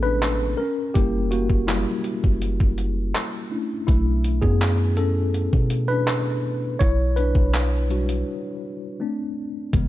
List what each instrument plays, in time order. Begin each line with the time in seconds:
Already playing: 808-style bass A1, tine electric piano G#3 A3 B3 C#4 E4 G#4 A4
0.03 tine electric piano D4 B4
0.22 clap, closed hi-hat
0.57 tine electric piano C#4 A#4
0.94 808-style bass F#1, tine electric piano G3 A#3 E4 G4, kick, closed hi-hat
1.31 tine electric piano A#3 F#4, closed hi-hat
1.50 808-style bass F#1, kick
1.67 tine electric piano G3 E4, clap, closed hi-hat
2.04 closed hi-hat
2.24 808-style bass F#1, kick
2.42 closed hi-hat
2.60 808-style bass F#1, kick
2.78 closed hi-hat
3.15 clap, closed hi-hat
3.51 tine electric piano A3 C#4 D4 E4
3.87 808-style bass B1, tine electric piano A3 E4, kick, closed hi-hat
4.24 closed hi-hat
4.42 808-style bass F#2, tine electric piano B3 G#4, kick
4.61 clap, closed hi-hat
4.97 tine electric piano C#4 A4, closed hi-hat
5.34 closed hi-hat
5.53 808-style bass B2, kick
5.70 closed hi-hat
5.88 tine electric piano D4 B4
6.07 clap, closed hi-hat
6.79 808-style bass B1, tine electric piano E4 C#5, kick, closed hi-hat
7.16 tine electric piano D4 B4, closed hi-hat
7.35 808-style bass B1, kick
7.54 clap, closed hi-hat
7.90 tine electric piano G3 D4 F#4, closed hi-hat
8.09 closed hi-hat
9.00 tine electric piano A3 C4 D4
9.73 808-style bass A1, tine electric piano C#3 G#3 B3, kick, closed hi-hat